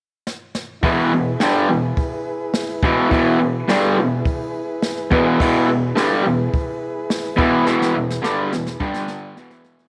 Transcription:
0.27 snare
0.55 snare
0.81 E2 B2 E3 E4 G#4 B4, kick, open hi-hat
1.13 E2 B2
1.40 G2 D3 G3, snare, open hi-hat
1.70 E2 B2
1.97 kick, open hi-hat
2.54 snare, open hi-hat
2.83 E2 B2 E3, kick
3.10 E2 B2 E3, kick, open hi-hat
3.39 E2 B2
3.68 G2 D3 G3, snare, open hi-hat
3.98 E2 B2
4.25 kick, open hi-hat
4.82 snare, open hi-hat
5.11 E2 B2 E3, kick
5.40 E2 B2 E3 E4 G#4, kick, crash
5.46 B4
5.67 E2 B2
5.95 G2 D3 G3, snare, open hi-hat
6.24 E2 B2
6.54 kick, open hi-hat
7.10 snare, open hi-hat
7.37 E2 B2 E3, kick
7.67 E2 B2 E3, snare
7.82 snare
7.95 E2 B2
8.10 snare
8.22 G2 D3 G3, snare
8.53 E2 B2, snare
8.67 snare
8.80 G2 D3 G3 D4 G4 D5, kick
8.94 snare
9.08 G5, snare
9.36 E2 B2 E3 E4 G#4 F#5, snare
9.42 B4
9.51 snare
9.64 snare
9.69 E5
9.79 snare

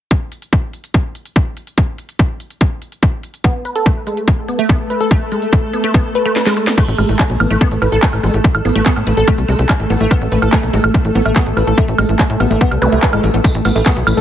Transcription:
0.11 kick, closed hi-hat
0.32 closed hi-hat
0.42 closed hi-hat
0.53 kick, closed hi-hat
0.73 closed hi-hat
0.84 closed hi-hat
0.94 kick, closed hi-hat
1.15 closed hi-hat
1.26 closed hi-hat
1.36 kick, closed hi-hat
1.57 closed hi-hat
1.67 closed hi-hat
1.78 kick, closed hi-hat
1.98 closed hi-hat
2.09 closed hi-hat
2.19 kick, closed hi-hat
2.40 closed hi-hat
2.50 closed hi-hat
2.61 kick, closed hi-hat
2.82 closed hi-hat
2.92 closed hi-hat
3.03 kick, closed hi-hat
3.23 closed hi-hat
3.34 closed hi-hat
3.44 A3 B3 A4, kick, closed hi-hat
3.65 B4, closed hi-hat
3.76 A4, closed hi-hat
3.86 A3, kick, closed hi-hat
4.07 G#3, closed hi-hat
4.17 closed hi-hat
4.28 kick, closed hi-hat
4.48 B3, closed hi-hat
4.59 A3, closed hi-hat
4.69 B3, kick, closed hi-hat
4.90 B4, closed hi-hat
5.01 A4, closed hi-hat
5.11 A3, kick, closed hi-hat
5.32 G#3, closed hi-hat
5.42 closed hi-hat
5.53 kick, closed hi-hat
5.73 B3, closed hi-hat
5.84 A3, closed hi-hat
5.94 B3, kick, closed hi-hat
6.15 B4, closed hi-hat
6.26 A3, closed hi-hat
6.36 B4, snare, closed hi-hat
6.46 G#3, snare
6.57 A3, closed hi-hat
6.67 B3, snare, closed hi-hat
6.78 A3 A4, kick, closed hi-hat, crash
6.88 A1, closed hi-hat
6.98 A1 G#3, open hi-hat, high woodblock
7.09 A1, closed hi-hat
7.19 kick, clap, closed hi-hat
7.30 B1, closed hi-hat
7.40 A1 B3, open hi-hat, high woodblock
7.51 A1 A3, closed hi-hat
7.61 B3, kick, closed hi-hat
7.71 A1, closed hi-hat
7.82 A1 B4, open hi-hat, high woodblock
7.92 A1 A4, closed hi-hat
8.03 A3, kick, clap, closed hi-hat
8.13 A1, closed hi-hat, high woodblock
8.23 A1 G#3, open hi-hat
8.34 A1, closed hi-hat
8.44 kick, closed hi-hat
8.55 A1, closed hi-hat, high woodblock
8.65 A1 B3, open hi-hat
8.76 A1 A3, closed hi-hat
8.86 B3, kick, clap, closed hi-hat
8.96 A2, closed hi-hat, high woodblock
9.07 A1 B4, open hi-hat
9.17 A1 A4, closed hi-hat
9.28 A3, kick, closed hi-hat, high woodblock
9.38 C2, closed hi-hat
9.48 C2 G#3, open hi-hat
9.59 C2, closed hi-hat
9.69 kick, clap, closed hi-hat, high woodblock
9.80 A1, closed hi-hat
9.90 A1 B3, open hi-hat
10.01 A1 A3, closed hi-hat
10.11 B3, kick, closed hi-hat, high woodblock
10.21 A1, closed hi-hat
10.32 A1 B4, open hi-hat
10.42 A1 A4, closed hi-hat, high woodblock
10.53 A3, kick, clap, closed hi-hat
10.63 B1, closed hi-hat
10.73 A1 G#3, open hi-hat
10.84 A1, closed hi-hat, high woodblock
10.94 kick, closed hi-hat
11.05 A1, closed hi-hat
11.15 A1 B3, open hi-hat
11.26 A1 A3, closed hi-hat, high woodblock
11.36 B3, kick, clap, closed hi-hat
11.46 A1, closed hi-hat
11.57 A1 B4, open hi-hat, high woodblock
11.67 A1 A4, closed hi-hat
11.78 A3, kick, closed hi-hat
11.88 A1, closed hi-hat
11.98 A1 G#3, open hi-hat, high woodblock
12.09 A1, closed hi-hat
12.19 kick, clap, closed hi-hat
12.30 A2, closed hi-hat
12.40 A1 B3, open hi-hat, high woodblock
12.51 A1 A3, closed hi-hat
12.61 B3, kick, closed hi-hat
12.71 C2, closed hi-hat, high woodblock
12.82 C2 B4, open hi-hat, zap
12.92 C2 A3, closed hi-hat
13.03 B4, kick, clap, closed hi-hat
13.13 A1 G#3, closed hi-hat, high woodblock
13.23 A1 A3, open hi-hat
13.34 A1 B3, closed hi-hat
13.44 E4, kick, closed hi-hat, tambourine
13.55 A1, closed hi-hat
13.65 A1 B3, open hi-hat, tambourine, high woodblock
13.76 A1 A3, closed hi-hat, tambourine
13.86 B3, kick, clap, closed hi-hat, tambourine
13.96 B1, closed hi-hat
14.07 A1 B4, open hi-hat, tambourine, high woodblock
14.17 A1 A4, closed hi-hat, tambourine

